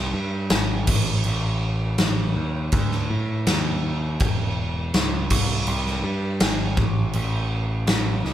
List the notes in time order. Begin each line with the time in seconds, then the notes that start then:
Already playing: C2
0.14 G2
0.50 G#1, snare, crash
0.87 A1, kick, crash
1.24 A1, crash
1.98 A1, snare, crash
2.37 D#2
2.72 D2, kick, crash
2.92 snare
3.10 A2
3.47 D#2, snare, crash
4.20 E1, kick, crash
4.94 C#2, snare, crash
5.30 C2, kick, crash
5.67 C2, crash
5.86 snare
6.04 G2
6.40 G#1, snare, crash
6.77 A1, kick
7.13 A1, crash
7.87 A1, snare, crash
8.25 C#2, snare